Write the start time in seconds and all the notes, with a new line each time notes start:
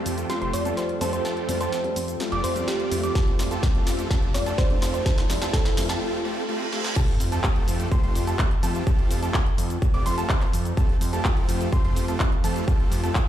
Already playing: F3 A3 C4 F4 G4 A4 A5, riser
0.06 F2, open hi-hat, cabasa
0.18 closed hi-hat, cabasa
0.29 G3 A3 C4 F4 G4 C5 C6, snare, closed hi-hat, cabasa
0.41 F1 A3 C4 F4 G4 C5 C6, closed hi-hat
0.53 F2 D5, open hi-hat, cabasa
0.65 G3 A3 C4 F4 G4 A4 A5, closed hi-hat, cabasa
0.77 C5, snare, closed hi-hat, cabasa
0.89 closed hi-hat
1.00 F2 G3 A3 C4 D4 F4 G4 A4 C5 A5, open hi-hat, cabasa
1.13 C5, closed hi-hat, cabasa
1.25 A3 C4 F4 G4 A4 A5, snare, closed hi-hat, cabasa
1.37 closed hi-hat
1.48 F2 G3 A3 C4 F4, open hi-hat, cabasa
1.60 A3 C4 F4 G4 A4 C5 A5, closed hi-hat, cabasa
1.72 snare, closed hi-hat, cabasa
1.84 G3 A3 C4 F4, closed hi-hat
1.96 F2, open hi-hat, cabasa
2.08 closed hi-hat, cabasa
2.19 G3 A3 C4 F4, snare, closed hi-hat, cabasa
2.32 F1 A3 C4 F4 G4 D5 D6, closed hi-hat
2.44 F2 C5, open hi-hat, cabasa
2.55 G3 A3 C4 F4, closed hi-hat, cabasa
2.68 G4, snare, closed hi-hat, cabasa
2.80 closed hi-hat
2.91 F2 G3 A3 C4 D4, open hi-hat, cabasa
3.03 A3 C4 F4 G4 D5 D6, closed hi-hat, cabasa
3.15 A3 C4 F4 G4 A4 A5, kick, snare, closed hi-hat, cabasa
3.27 closed hi-hat
3.39 F2 G3 A3 C4 F4, snare, open hi-hat, cabasa
3.51 A3 C4 F4 G4 A4 A5, closed hi-hat, cabasa
3.63 kick, snare, closed hi-hat, cabasa
3.74 G3 A3 C4 F4, closed hi-hat
3.87 F2, snare, open hi-hat, cabasa
3.99 closed hi-hat, cabasa
4.11 A3 C4 F4 G4 A4 A5, kick, snare, closed hi-hat, cabasa
4.22 F1, closed hi-hat
4.34 F2 G3 A3 C4 F4 D5, snare, open hi-hat, cabasa
4.46 A3 C4 F4 G4 A4 A5, closed hi-hat, cabasa
4.58 C5, kick, snare, closed hi-hat, cabasa
4.69 G3 A3 C4 F4, closed hi-hat
4.82 F2 C5, snare, open hi-hat, cabasa
4.94 C5, closed hi-hat, cabasa
5.06 A3 C4 F4 G4 A4 A5, kick, snare, closed hi-hat, cabasa
5.18 snare, closed hi-hat
5.29 F2 G3 A3 C4 F4, snare, open hi-hat, cabasa
5.42 A3 C4 F4 G4 A4 A5, snare, closed hi-hat, cabasa
5.53 A3 C4 F4 G4 A4 A5, kick, snare, closed hi-hat, cabasa
5.65 snare, closed hi-hat
5.77 F2 G3 A3 C4 F4, snare, open hi-hat, cabasa
5.89 A3 C4 F4 G4 A4 A5, snare, closed hi-hat, cabasa
6.01 A3 C4 F4 G4 A4, reverse cymbal
6.25 A3 C4 F4 G4 A4
6.49 A3 C4 F4 G4 A4
6.73 A3 C4 F4 G4 A4, snare
6.84 snare
6.96 F3 A3 C4 F4 G4 A4 A5, kick, closed hi-hat, crash, sub drop, cabasa
7.08 closed hi-hat
7.20 F2, open hi-hat, cabasa
7.32 A3 C4 F4 G4 A4 A5, closed hi-hat, cabasa
7.44 kick, clap, closed hi-hat, cabasa
7.56 closed hi-hat
7.68 F2, open hi-hat, cabasa
7.80 closed hi-hat, cabasa
7.92 A3 C4 F4 G4 C5 C6, kick, closed hi-hat, cabasa
8.03 F1 A3 C4 F4 G4 C5 C6, closed hi-hat
8.15 F2, open hi-hat, cabasa
8.27 A3 C4 F4 G4 A4 A5, closed hi-hat, cabasa
8.39 kick, clap, closed hi-hat, cabasa
8.51 closed hi-hat
8.63 F2 A3 C4 F4 G4 A4 A5, open hi-hat, cabasa
8.75 closed hi-hat, cabasa
8.87 A3 C4 F4 G4 A4 A5, kick, closed hi-hat, cabasa
8.99 closed hi-hat
9.11 F2, open hi-hat, cabasa
9.23 A3 C4 F4 G4 A4 A5, closed hi-hat, cabasa
9.34 kick, clap, closed hi-hat, cabasa
9.46 closed hi-hat
9.58 F2, open hi-hat, cabasa
9.70 closed hi-hat, cabasa
9.82 kick, closed hi-hat, cabasa
9.94 F1 A3 C4 F4 G4 D5 D6, closed hi-hat
10.06 F2 A3 C4 F4 G4 C5 C6, open hi-hat, cabasa
10.18 A3 C4 F4 G4 A4 A5, closed hi-hat, cabasa
10.29 A3 C4 F4 G4 C5 C6, kick, clap, closed hi-hat, cabasa
10.41 clap, closed hi-hat
10.53 F2, open hi-hat, cabasa
10.65 closed hi-hat, cabasa
10.77 A3 C4 F4 G4 A4 A5, kick, closed hi-hat, cabasa
10.89 closed hi-hat
11.01 F2, open hi-hat, cabasa
11.13 A3 C4 F4 G4 A4 A5, closed hi-hat, cabasa
11.25 kick, clap, closed hi-hat, cabasa
11.37 closed hi-hat
11.49 F2, open hi-hat, cabasa
11.61 closed hi-hat, cabasa
11.72 A3 C4 F4 G4 C5 C6, kick, closed hi-hat, cabasa
11.84 F1 A3 C4 F4 G4 C5 C6, closed hi-hat
11.96 F2, open hi-hat, cabasa
12.08 A3 C4 F4 G4 A4 A5, closed hi-hat, cabasa
12.20 kick, clap, closed hi-hat, cabasa
12.32 closed hi-hat
12.44 F2 A3 C4 F4 G4 A4 A5, open hi-hat, cabasa
12.56 closed hi-hat, cabasa
12.68 A3 C4 F4 G4 A4 A5, kick, closed hi-hat, cabasa
12.80 closed hi-hat
12.92 F2, open hi-hat, cabasa
13.04 A3 C4 F4 G4 A4 A5, closed hi-hat, cabasa
13.15 kick, clap, closed hi-hat, cabasa